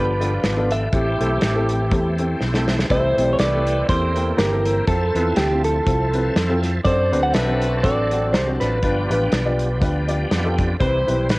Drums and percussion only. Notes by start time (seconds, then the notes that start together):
0.21 closed hi-hat
0.44 snare, closed hi-hat
0.71 closed hi-hat
0.93 kick, closed hi-hat
1.21 closed hi-hat
1.41 snare, closed hi-hat
1.69 closed hi-hat
1.91 kick, closed hi-hat
2.18 closed hi-hat
2.41 snare
2.54 snare
2.68 snare
2.79 snare
2.90 kick, closed hi-hat
3.18 closed hi-hat
3.39 snare, closed hi-hat
3.67 closed hi-hat
3.89 kick, snare, closed hi-hat
4.16 closed hi-hat
4.39 snare, closed hi-hat
4.66 closed hi-hat
4.88 kick, closed hi-hat
5.16 closed hi-hat
5.36 snare, closed hi-hat
5.64 closed hi-hat
5.87 kick, closed hi-hat
6.13 closed hi-hat
6.36 snare, closed hi-hat
6.63 snare, closed hi-hat
6.85 kick, closed hi-hat
7.13 closed hi-hat
7.34 snare, closed hi-hat
7.62 closed hi-hat
7.84 kick, snare, closed hi-hat
8.11 closed hi-hat
8.34 snare, closed hi-hat
8.60 snare, closed hi-hat
8.83 kick, closed hi-hat
9.11 closed hi-hat
9.32 snare, closed hi-hat
9.59 closed hi-hat
9.81 kick, snare, closed hi-hat
10.09 closed hi-hat
10.31 snare, closed hi-hat
10.58 kick, closed hi-hat
10.81 kick, closed hi-hat
11.08 closed hi-hat
11.29 snare, closed hi-hat